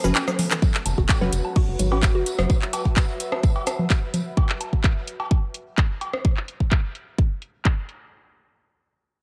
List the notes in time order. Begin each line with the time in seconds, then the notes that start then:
Already playing: A3 B3
0.04 F#1 C#4 F#4 B4, closed hi-hat, low conga, cabasa
0.15 C#4, clap, tambourine, cowbell
0.28 F#3, cross-stick, snare, cabasa
0.39 open hi-hat, tambourine, low conga
0.51 E3, clap, cabasa
0.62 F#3 F#4, kick, tambourine
0.74 clap, closed hi-hat
0.86 F#1, closed hi-hat, tambourine, low woodblock
0.94 F#1 F#4 B4, kick, snare
1.09 kick, snare, clap, tambourine, cowbell
1.21 F#1 F#3 C#4 F#4 B4
1.32 F#1, closed hi-hat, tambourine
1.45 low woodblock
1.55 F#4, kick, open hi-hat
1.62 E5
1.68 F#1
1.79 G#1 F#3, closed hi-hat, tambourine
1.92 C#4 F#4 B4, cowbell
2.03 kick, snare, clap, tambourine
2.15 F#1 F#4
2.26 closed hi-hat, tambourine
2.38 F#1 F#3, cross-stick, closed hi-hat
2.50 kick, tambourine
2.62 clap, closed hi-hat
2.73 snare, closed hi-hat, tambourine, cowbell, low woodblock
2.85 kick, snare
2.97 kick, snare, clap, tambourine
3.09 snare
3.20 closed hi-hat, tambourine
3.32 cross-stick, low woodblock
3.43 kick, tambourine
3.56 cowbell
3.66 cross-stick, closed hi-hat, tambourine, low woodblock
3.79 low conga
3.90 kick, snare, clap, tambourine
4.14 closed hi-hat, tambourine, low conga
4.37 kick, cowbell
4.49 clap
4.61 closed hi-hat, low woodblock
4.73 kick
4.84 kick, clap
5.07 closed hi-hat
5.20 cowbell, low woodblock
5.31 kick
5.54 closed hi-hat
5.78 kick, clap
6.01 closed hi-hat, cowbell
6.13 cross-stick
6.25 kick
6.37 clap
6.48 closed hi-hat
6.60 kick
6.72 kick, clap
6.95 closed hi-hat
7.18 kick
7.42 closed hi-hat
7.65 kick, clap
7.89 closed hi-hat